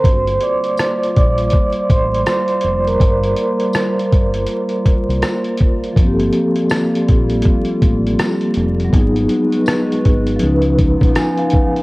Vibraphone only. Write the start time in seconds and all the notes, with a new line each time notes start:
Already playing: C5 C6
0.43 D5 D6
1.16 D5 D6
1.91 C5 C6
2.28 C5 C6
2.87 A#4 A#5
5.93 F3
5.97 A#3
6.02 C4
6.07 G4
6.13 A4
8.85 F#3
8.89 B3
8.94 D#4
8.99 G#4
10.36 F3
10.40 C#4
10.45 D#4
10.49 B4
11.16 G#5
11.38 F5